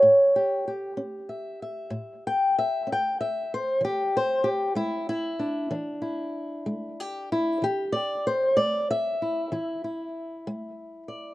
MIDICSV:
0, 0, Header, 1, 2, 480
1, 0, Start_track
1, 0, Tempo, 630915
1, 27, Time_signature, 12, 3, 24, 8
1, 8629, End_track
2, 0, Start_track
2, 0, Title_t, "Steel-string acoustic guitar"
2, 0, Program_c, 0, 25
2, 0, Note_on_c, 0, 73, 99
2, 19, Note_on_c, 0, 45, 72
2, 273, Note_on_c, 0, 67, 54
2, 456, Note_off_c, 0, 45, 0
2, 505, Note_off_c, 0, 67, 0
2, 514, Note_on_c, 0, 67, 43
2, 521, Note_off_c, 0, 73, 0
2, 738, Note_on_c, 0, 61, 67
2, 982, Note_on_c, 0, 76, 46
2, 1177, Note_off_c, 0, 61, 0
2, 1231, Note_off_c, 0, 76, 0
2, 1234, Note_on_c, 0, 76, 52
2, 1448, Note_on_c, 0, 45, 83
2, 1723, Note_off_c, 0, 76, 0
2, 1726, Note_on_c, 0, 79, 91
2, 1893, Note_off_c, 0, 45, 0
2, 1960, Note_off_c, 0, 79, 0
2, 1967, Note_on_c, 0, 76, 80
2, 2183, Note_on_c, 0, 61, 58
2, 2200, Note_off_c, 0, 76, 0
2, 2224, Note_on_c, 0, 79, 82
2, 2436, Note_off_c, 0, 79, 0
2, 2439, Note_on_c, 0, 76, 76
2, 2621, Note_off_c, 0, 61, 0
2, 2677, Note_off_c, 0, 76, 0
2, 2693, Note_on_c, 0, 72, 86
2, 2889, Note_off_c, 0, 67, 0
2, 2896, Note_on_c, 0, 52, 69
2, 2922, Note_off_c, 0, 72, 0
2, 2926, Note_on_c, 0, 67, 83
2, 3161, Note_off_c, 0, 67, 0
2, 3170, Note_on_c, 0, 72, 90
2, 3338, Note_off_c, 0, 52, 0
2, 3377, Note_on_c, 0, 67, 87
2, 3403, Note_off_c, 0, 72, 0
2, 3616, Note_on_c, 0, 56, 70
2, 3621, Note_off_c, 0, 67, 0
2, 3624, Note_on_c, 0, 64, 97
2, 3863, Note_off_c, 0, 64, 0
2, 3872, Note_on_c, 0, 64, 100
2, 4059, Note_off_c, 0, 56, 0
2, 4104, Note_on_c, 0, 62, 50
2, 4341, Note_off_c, 0, 62, 0
2, 4341, Note_on_c, 0, 52, 80
2, 4344, Note_on_c, 0, 62, 52
2, 4355, Note_off_c, 0, 64, 0
2, 4578, Note_on_c, 0, 64, 53
2, 4781, Note_off_c, 0, 52, 0
2, 5067, Note_on_c, 0, 56, 64
2, 5326, Note_off_c, 0, 64, 0
2, 5326, Note_on_c, 0, 67, 85
2, 5504, Note_off_c, 0, 56, 0
2, 5562, Note_off_c, 0, 67, 0
2, 5570, Note_on_c, 0, 64, 86
2, 5797, Note_on_c, 0, 52, 66
2, 5803, Note_off_c, 0, 64, 0
2, 5807, Note_off_c, 0, 62, 0
2, 5810, Note_on_c, 0, 67, 89
2, 6029, Note_on_c, 0, 74, 94
2, 6043, Note_off_c, 0, 67, 0
2, 6228, Note_off_c, 0, 52, 0
2, 6273, Note_off_c, 0, 74, 0
2, 6290, Note_on_c, 0, 72, 92
2, 6517, Note_on_c, 0, 74, 91
2, 6519, Note_on_c, 0, 56, 57
2, 6523, Note_off_c, 0, 72, 0
2, 6756, Note_off_c, 0, 74, 0
2, 6775, Note_on_c, 0, 76, 106
2, 6949, Note_off_c, 0, 56, 0
2, 7014, Note_on_c, 0, 64, 51
2, 7241, Note_on_c, 0, 52, 79
2, 7243, Note_off_c, 0, 64, 0
2, 7247, Note_on_c, 0, 64, 50
2, 7484, Note_off_c, 0, 64, 0
2, 7487, Note_on_c, 0, 64, 48
2, 7669, Note_off_c, 0, 52, 0
2, 7966, Note_on_c, 0, 56, 71
2, 8201, Note_off_c, 0, 76, 0
2, 8390, Note_off_c, 0, 56, 0
2, 8431, Note_on_c, 0, 74, 55
2, 8629, Note_off_c, 0, 64, 0
2, 8629, Note_off_c, 0, 74, 0
2, 8629, End_track
0, 0, End_of_file